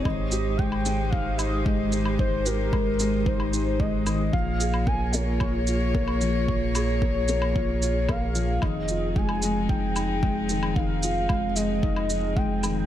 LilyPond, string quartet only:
\new Staff \with { instrumentName = "String quartet" } { \time 4/4 \key f \minor \tempo 4 = 112 <aes ees' g' c''>1~ | <aes ees' g' c''>1 | <bes f' aes' des''>1~ | <bes f' aes' des''>1 |
<f c' ees'>1~ | <f c' ees'>1 | }